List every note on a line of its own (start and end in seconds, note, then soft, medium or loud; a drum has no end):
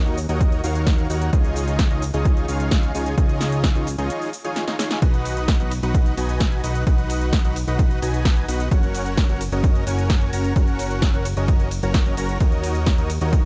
0.06 0.27 D#2 loud
0.06 0.18 D#4 medium
0.06 0.18 F#4 medium
0.06 0.18 A#4 medium
0.06 0.18 C#5 medium
0.06 0.18 D#5 medium
0.06 closed hi-hat soft
0.06 shaker soft
0.18 open hi-hat loud
0.18 shaker medium
0.29 0.61 D#2 medium
0.29 0.61 D#4 medium
0.29 0.61 F#4 medium
0.29 0.61 A#4 medium
0.29 0.61 C#5 medium
0.29 0.61 D#5 loud
0.29 closed hi-hat medium
0.29 shaker soft
0.41 kick loud
0.41 closed hi-hat medium
0.41 shaker soft
0.52 closed hi-hat soft
0.52 shaker soft
0.64 1.08 D#2 loud
0.64 1.07 D#4 loud
0.64 1.07 F#4 medium
0.64 1.07 A#4 medium
0.64 1.07 C#5 medium
0.64 1.07 F5 loud
0.64 open hi-hat loud
0.64 shaker medium
0.75 closed hi-hat medium
0.75 shaker soft
0.87 kick loud
0.87 snare loud
0.87 closed hi-hat medium
0.87 shaker soft
0.98 closed hi-hat soft
0.98 shaker soft
1.10 1.31 D#2 loud
1.10 1.30 D#4 medium
1.10 1.30 F#4 medium
1.10 1.30 A#4 medium
1.10 1.30 C#5 medium
1.10 1.30 F#5 medium
1.10 open hi-hat loud
1.10 shaker medium
1.21 closed hi-hat medium
1.21 shaker soft
1.33 1.88 C#2 medium
1.33 1.88 D#4 medium
1.33 1.88 F4 medium
1.33 1.88 G#4 medium
1.33 1.88 C#5 medium
1.33 1.88 D#5 loud
1.33 kick loud
1.33 closed hi-hat medium
1.33 shaker soft
1.44 closed hi-hat soft
1.44 shaker soft
1.56 open hi-hat loud
1.56 shaker medium
1.68 closed hi-hat medium
1.68 shaker soft
1.79 kick loud
1.79 snare loud
1.79 closed hi-hat medium
1.79 shaker soft
1.91 2.11 C#2 loud
1.91 2.03 D#4 medium
1.91 2.03 F4 medium
1.91 2.03 G#4 medium
1.91 2.03 C#5 medium
1.91 2.03 D#5 medium
1.91 closed hi-hat soft
1.91 shaker soft
2.02 open hi-hat loud
2.02 shaker medium
2.14 2.46 C#2 medium
2.14 2.46 D#4 medium
2.14 2.46 F4 medium
2.14 2.46 G#4 medium
2.14 2.46 C#5 medium
2.14 2.46 D#5 loud
2.14 closed hi-hat medium
2.14 shaker soft
2.25 kick loud
2.25 closed hi-hat medium
2.25 shaker soft
2.37 closed hi-hat soft
2.37 shaker soft
2.48 2.92 C#2 loud
2.48 2.92 D#4 medium
2.48 2.92 F4 medium
2.48 2.92 G#4 medium
2.48 2.92 C#5 medium
2.48 2.92 F5 loud
2.48 open hi-hat loud
2.48 shaker medium
2.60 closed hi-hat medium
2.60 shaker soft
2.71 kick loud
2.71 snare loud
2.71 closed hi-hat medium
2.71 shaker soft
2.83 closed hi-hat soft
2.83 shaker soft
2.94 3.15 C#2 loud
2.94 3.15 D#4 medium
2.94 3.15 F4 medium
2.94 3.15 G#4 medium
2.94 3.15 C#5 medium
2.94 3.15 G#5 medium
2.94 open hi-hat loud
2.94 shaker medium
3.06 closed hi-hat medium
3.06 shaker soft
3.18 3.73 C#2 medium
3.18 3.73 F4 medium
3.18 kick loud
3.18 closed hi-hat medium
3.18 shaker soft
3.29 closed hi-hat soft
3.29 shaker soft
3.41 snare medium
3.41 open hi-hat loud
3.41 shaker medium
3.52 closed hi-hat medium
3.52 shaker soft
3.64 kick loud
3.64 snare loud
3.64 closed hi-hat medium
3.64 shaker soft
3.75 3.96 C#2 loud
3.75 3.88 D#4 medium
3.75 3.88 F4 medium
3.75 3.88 G#4 medium
3.75 3.88 C#5 medium
3.75 3.88 D#5 medium
3.75 closed hi-hat soft
3.75 shaker soft
3.87 open hi-hat loud
3.87 shaker medium
3.98 4.10 C#2 loud
3.98 4.30 D#4 medium
3.98 4.30 F4 medium
3.98 4.30 G#4 medium
3.98 4.30 C#5 medium
3.98 4.30 D#5 loud
3.98 closed hi-hat medium
3.98 shaker soft
4.10 closed hi-hat medium
4.10 shaker soft
4.22 open hi-hat medium
4.22 shaker soft
4.33 open hi-hat loud
4.33 shaker medium
4.44 4.65 D#4 medium
4.44 4.65 F4 medium
4.44 4.65 G#4 medium
4.44 4.65 C#5 medium
4.44 4.65 G#5 medium
4.44 closed hi-hat medium
4.44 shaker soft
4.56 snare medium
4.56 closed hi-hat medium
4.56 shaker soft
4.67 4.76 D#4 medium
4.67 4.76 F4 medium
4.67 4.76 G#4 medium
4.67 4.76 C#5 medium
4.67 4.76 D#5 medium
4.67 snare medium
4.67 closed hi-hat soft
4.67 shaker soft
4.79 4.99 D#4 loud
4.79 4.99 F4 medium
4.79 4.99 G#4 medium
4.79 4.99 C#5 medium
4.79 4.99 G#5 loud
4.79 snare medium
4.79 open hi-hat loud
4.79 shaker medium
4.91 snare medium
4.91 closed hi-hat medium
4.91 shaker soft
5.02 5.58 B1 medium
5.02 5.57 D#4 medium
5.02 5.57 F#4 medium
5.02 5.57 B4 medium
5.02 5.57 D#5 medium
5.02 5.57 F#5 loud
5.02 kick loud
5.02 closed hi-hat medium
5.02 ride medium
5.02 shaker soft
5.14 closed hi-hat soft
5.14 shaker soft
5.25 open hi-hat loud
5.25 ride medium
5.25 shaker medium
5.37 closed hi-hat medium
5.37 shaker soft
5.48 kick loud
5.48 snare loud
5.48 closed hi-hat medium
5.48 ride medium
5.48 shaker soft
5.60 5.81 B1 loud
5.60 5.72 D#4 medium
5.60 5.72 F#4 medium
5.60 5.72 B4 medium
5.60 5.72 D#5 medium
5.60 5.72 F#5 medium
5.60 closed hi-hat soft
5.60 shaker soft
5.71 open hi-hat loud
5.71 ride medium
5.71 shaker medium
5.83 6.15 B1 medium
5.83 6.15 D#4 medium
5.83 6.15 F#4 medium
5.83 6.15 B4 medium
5.83 6.15 D#5 medium
5.83 6.15 F#5 loud
5.83 closed hi-hat medium
5.83 shaker soft
5.94 kick loud
5.94 closed hi-hat medium
5.94 ride medium
5.94 shaker soft
6.06 closed hi-hat soft
6.06 shaker soft
6.17 6.61 B1 loud
6.17 6.61 D#4 medium
6.17 6.61 F#4 medium
6.17 6.61 B4 medium
6.17 6.61 D#5 medium
6.17 6.61 G#5 loud
6.17 open hi-hat loud
6.17 ride medium
6.17 shaker medium
6.29 closed hi-hat medium
6.29 shaker soft
6.40 kick loud
6.40 snare loud
6.40 closed hi-hat medium
6.40 ride medium
6.40 shaker soft
6.52 closed hi-hat soft
6.52 shaker soft
6.64 6.84 B1 medium
6.64 6.84 D#4 medium
6.64 6.84 F#4 medium
6.64 6.84 B4 medium
6.64 6.84 D#5 medium
6.64 6.84 F#5 medium
6.64 open hi-hat loud
6.64 ride medium
6.64 shaker medium
6.75 closed hi-hat medium
6.75 shaker soft
6.87 7.42 B1 loud
6.87 7.42 D#4 medium
6.87 kick loud
6.87 closed hi-hat medium
6.87 ride medium
6.87 shaker soft
6.98 closed hi-hat soft
6.98 shaker soft
7.10 open hi-hat loud
7.10 ride medium
7.10 shaker medium
7.21 closed hi-hat medium
7.21 shaker soft
7.33 kick loud
7.33 snare loud
7.33 closed hi-hat medium
7.33 ride medium
7.33 shaker soft
7.44 7.65 B1 loud
7.44 7.57 D#4 medium
7.44 7.57 F#4 medium
7.44 7.57 B4 medium
7.44 7.57 D#5 medium
7.44 7.57 F#5 medium
7.44 closed hi-hat soft
7.44 shaker soft
7.56 open hi-hat loud
7.56 ride medium
7.56 shaker medium
7.68 8.00 B1 medium
7.68 7.99 D#4 medium
7.68 7.99 F#4 medium
7.68 7.99 B4 medium
7.68 7.99 D#5 medium
7.68 7.99 F#5 loud
7.68 closed hi-hat medium
7.68 shaker soft
7.79 kick loud
7.79 closed hi-hat medium
7.79 ride medium
7.79 shaker soft
7.91 closed hi-hat soft
7.91 shaker soft
8.02 8.46 B1 medium
8.02 8.46 D#4 loud
8.02 8.46 F#4 medium
8.02 8.46 B4 medium
8.02 8.46 D#5 medium
8.02 8.46 G#5 loud
8.02 open hi-hat loud
8.02 ride medium
8.02 shaker medium
8.14 closed hi-hat medium
8.14 shaker soft
8.25 kick loud
8.25 snare loud
8.25 closed hi-hat medium
8.25 ride medium
8.25 shaker soft
8.37 closed hi-hat soft
8.37 shaker soft
8.48 8.69 B1 medium
8.48 8.69 D#4 medium
8.48 8.69 F#4 medium
8.48 8.69 B4 medium
8.48 8.69 D#5 medium
8.48 8.69 F#5 loud
8.48 open hi-hat loud
8.48 ride medium
8.48 shaker medium
8.60 closed hi-hat medium
8.60 shaker soft
8.71 9.27 F#1 loud
8.71 9.26 C#4 medium
8.71 9.26 F#4 medium
8.71 9.26 A#4 medium
8.71 9.26 C#5 medium
8.71 9.26 F#5 loud
8.71 kick loud
8.71 closed hi-hat medium
8.71 ride medium
8.71 shaker soft
8.83 closed hi-hat soft
8.83 shaker soft
8.95 open hi-hat loud
8.95 ride medium
8.95 shaker medium
9.06 closed hi-hat soft
9.06 shaker soft
9.17 kick loud
9.17 snare loud
9.17 closed hi-hat medium
9.17 ride medium
9.17 shaker soft
9.29 9.50 F#1 loud
9.29 9.41 C#4 medium
9.29 9.41 F#4 medium
9.29 9.41 A#4 medium
9.29 9.41 C#5 medium
9.29 9.41 F#5 medium
9.29 closed hi-hat soft
9.29 shaker soft
9.41 open hi-hat loud
9.41 ride medium
9.41 shaker medium
9.52 9.84 F#1 medium
9.52 9.84 C#4 medium
9.52 9.84 F#4 medium
9.52 9.84 A#4 medium
9.52 9.84 C#5 medium
9.52 9.84 D#5 loud
9.52 closed hi-hat medium
9.52 shaker soft
9.64 kick loud
9.64 closed hi-hat medium
9.64 ride medium
9.64 shaker soft
9.75 closed hi-hat soft
9.75 shaker soft
9.87 10.31 F#1 loud
9.87 10.30 C#4 medium
9.87 10.30 F#4 medium
9.87 10.30 A#4 medium
9.87 10.30 C#5 medium
9.87 10.30 G#5 loud
9.87 open hi-hat loud
9.87 ride medium
9.87 shaker medium
9.98 closed hi-hat soft
9.98 shaker soft
10.10 kick loud
10.10 snare loud
10.10 closed hi-hat medium
10.10 ride medium
10.10 shaker soft
10.21 closed hi-hat soft
10.21 shaker soft
10.33 10.54 F#1 medium
10.33 10.53 C#4 medium
10.33 10.53 F#4 medium
10.33 10.53 A#4 medium
10.33 10.53 C#5 medium
10.33 10.53 A#5 loud
10.33 open hi-hat loud
10.33 ride medium
10.33 shaker medium
10.44 closed hi-hat medium
10.44 shaker soft
10.56 11.11 F#1 medium
10.56 11.11 C#4 medium
10.56 11.11 F#4 medium
10.56 11.11 A#4 medium
10.56 11.11 C#5 medium
10.56 11.11 F#5 loud
10.56 kick loud
10.56 closed hi-hat medium
10.56 ride medium
10.56 shaker soft
10.68 closed hi-hat soft
10.68 shaker soft
10.79 open hi-hat loud
10.79 ride medium
10.79 shaker medium
10.91 closed hi-hat medium
10.91 shaker soft
11.02 kick loud
11.02 snare loud
11.02 closed hi-hat medium
11.02 ride medium
11.02 shaker soft
11.13 11.34 F#1 loud
11.13 11.26 C#4 medium
11.13 11.26 F#4 medium
11.13 11.26 A#4 medium
11.13 11.26 C#5 medium
11.13 11.26 F#5 medium
11.13 closed hi-hat soft
11.13 shaker soft
11.25 open hi-hat loud
11.25 ride medium
11.25 shaker medium
11.37 11.81 F#1 medium
11.37 11.69 C#4 medium
11.37 11.69 F#4 medium
11.37 11.69 A#4 medium
11.37 11.69 C#5 medium
11.37 11.69 D#5 loud
11.37 closed hi-hat medium
11.37 shaker soft
11.48 kick loud
11.48 closed hi-hat medium
11.48 ride medium
11.48 shaker soft
11.60 closed hi-hat soft
11.60 shaker soft
11.71 open hi-hat loud
11.71 ride medium
11.71 shaker medium
11.83 12.04 F#1 loud
11.83 12.03 C#4 medium
11.83 12.03 F#4 medium
11.83 12.03 A#4 medium
11.83 12.03 C#5 medium
11.83 12.03 A#5 loud
11.83 closed hi-hat soft
11.83 shaker soft
11.94 kick loud
11.94 snare loud
11.94 closed hi-hat medium
11.94 ride medium
11.94 shaker soft
12.06 12.15 F#1 loud
12.06 12.15 C#4 medium
12.06 12.15 F#4 medium
12.06 12.15 A#4 medium
12.06 12.15 C#5 medium
12.06 12.15 D#5 medium
12.06 closed hi-hat soft
12.06 shaker soft
12.17 12.38 F#1 medium
12.17 12.38 C#4 loud
12.17 12.38 F#4 medium
12.17 12.38 A#4 medium
12.17 12.38 C#5 medium
12.17 12.38 A#5 loud
12.17 open hi-hat loud
12.17 ride medium
12.17 shaker medium
12.29 closed hi-hat medium
12.29 shaker soft
12.40 12.96 D#2 medium
12.40 12.96 D#4 medium
12.40 12.96 A#4 medium
12.40 12.96 D#5 loud
12.40 kick loud
12.40 closed hi-hat medium
12.40 ride medium
12.40 shaker soft
12.52 closed hi-hat soft
12.52 shaker soft
12.64 open hi-hat loud
12.64 ride medium
12.64 shaker medium
12.75 closed hi-hat soft
12.75 shaker soft
12.86 kick loud
12.86 snare loud
12.86 closed hi-hat medium
12.86 ride medium
12.86 shaker soft
12.98 13.19 D#2 loud
12.98 13.11 D#4 medium
12.98 13.11 F#4 medium
12.98 13.11 A#4 medium
12.98 13.11 C#5 medium
12.98 13.11 D#5 medium
12.98 closed hi-hat soft
12.98 shaker soft
13.10 open hi-hat loud
13.10 ride medium
13.10 shaker medium
13.21 13.45 D#2 medium
13.21 13.45 D#4 medium
13.21 13.45 F#4 medium
13.21 13.45 A#4 medium
13.21 13.45 C#5 medium
13.21 13.45 D#5 loud
13.21 closed hi-hat medium
13.21 shaker soft
13.33 kick loud
13.33 closed hi-hat medium
13.33 ride medium
13.33 shaker soft